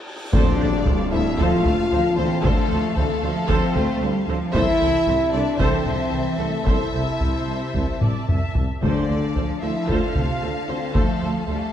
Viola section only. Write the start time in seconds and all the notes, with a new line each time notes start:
0.34 A4 C5
0.59 A4 C5
0.85 A4 C5
1.13 A4 C5
1.40 A4 C5
1.65 A4 C5
1.92 A4 C5
2.17 A4 C5
2.43 A4 C5
2.70 A4 C5
2.97 A4 C5
3.23 A4 C5
3.49 A4 C5
3.76 A4 C5
4.02 A4 C5
4.28 A4 C5
4.54 A4 C5
4.81 A4 C5
5.07 A4 C5
5.33 A4 C5
5.58 A4 C5
5.86 A4 C5
6.11 A4 C5
6.39 A4 C5
6.65 A4 C5
6.93 A4 C5
7.19 C5
8.01 D5
8.28 E5
8.83 A4 C5
9.11 A4 C5
9.36 A4 C5
9.62 A4 C5
9.87 A4 C5
10.15 A4 C5
10.42 A4 C5
10.68 A4 C5
10.94 A4 C5
11.21 A4 C5
11.48 A4 C5